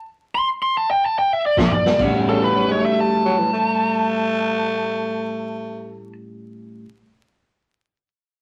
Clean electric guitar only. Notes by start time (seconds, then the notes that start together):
1.58 A#2 F3
1.85 A#2 G3
1.99 A2 G3 C#4 F#4